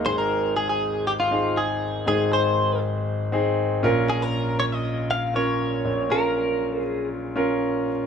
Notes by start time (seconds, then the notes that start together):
0.05 G#1 G#2 C4 D#4 G#4 C5
0.18 A#4
0.56 G#4
0.69 G#4
1.07 G4
1.20 F4
1.31 C4 D#4 G#4
1.57 G#4
2.06 G#1 G#2 C4 D#4 G#4
2.33 C5
3.32 C4 D#4 G#4
3.83 A#1 A#2 C#4 F4 A#4
4.10 G#4
4.22 A#4
4.60 C#5
4.72 D#5
5.11 F5
5.34 C#4 F4 A#4 C#5
5.85 A#1 A#2
6.10 C#4 F4 A#4
6.80 G#4
7.36 C#4 F4 A#4